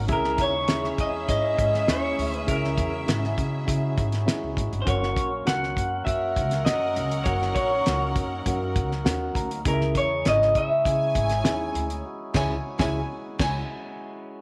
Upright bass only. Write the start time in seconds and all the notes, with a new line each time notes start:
0.09 C#2
0.39 D#2
0.99 E2
1.29 G#2
1.59 G#2
1.88 D#2
2.18 D2
2.48 C#2
2.78 E2
3.08 G#1
3.38 C#3
3.68 C#3
3.98 G#2
4.43 C#2
4.57 G#1
4.73 G1
4.87 F#1
5.17 A#1
5.47 C#2
5.77 F#2
6.07 F#2
6.37 C#2
6.66 F#2
6.96 C#2
7.26 F#1
7.56 A#1
7.86 C#2
8.16 F#2
8.46 F#2
8.76 C#2
9.05 D#2
9.36 D2
9.66 C#2
9.95 E2
10.26 G#1
10.56 C#3
10.85 C#3
11.16 G#1
11.45 D#2
11.74 D2
12.35 C#2
12.80 C#2
13.40 C#2